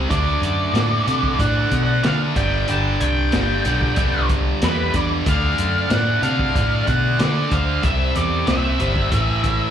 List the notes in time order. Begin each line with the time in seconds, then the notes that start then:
0.09 D2 D3 A3 D4 A4 D5, kick, closed hi-hat
0.42 F#2, closed hi-hat
0.73 A2 D3 A3 D4, snare, closed hi-hat
1.07 C3 D3 A3 D4, closed hi-hat
1.23 kick
1.39 A2 D3 A3 D4 D5 F#5, kick, closed hi-hat
1.71 B2, kick, closed hi-hat
1.83 D5 F#5
2.03 D3 A3 D4 D5 F5, snare, closed hi-hat
2.35 G1 G2 D3 G3 D5 G5, kick, closed hi-hat
2.67 G1 G2 D3 G3 G5 A5, closed hi-hat
3.01 C2 D5 G5, closed hi-hat
3.32 G1 G2 D3 G3, snare, closed hi-hat
3.65 B1 G2 D3 G3, closed hi-hat
3.81 kick
3.96 C2 G2 D3 G3, kick, closed hi-hat
4.29 kick, closed hi-hat
4.62 E2 G2 D3 G3 G4 B4, snare, closed hi-hat
4.94 E2 G2 D3 G3 A4 D5, kick, closed hi-hat
5.26 D2 D3 A3 D4 D5 F5, kick, closed hi-hat
5.58 F#2, closed hi-hat
5.90 A2 D3 A3 D4 D5 F#5, snare, closed hi-hat
6.22 C3 D3 A3 D4 D5 F5, closed hi-hat
6.39 kick
6.55 A2 D3 A3 D4, kick, closed hi-hat
6.87 B2 D5 F#5, kick, closed hi-hat
7.19 D3 A3 D4 A4 D5, snare, closed hi-hat
7.51 D2 D3 A3 D4 C5 F5, kick, closed hi-hat
7.83 C2 C3 G3 C4 C5 E5, kick, closed hi-hat
8.16 E2 A4 D5, closed hi-hat
8.47 C2 C3 G3 C4 C5 E5, snare, closed hi-hat
8.80 G1 C3 G3 C4, closed hi-hat
8.96 kick
9.12 A1 A2 E3 A3, kick, closed hi-hat
9.44 kick, closed hi-hat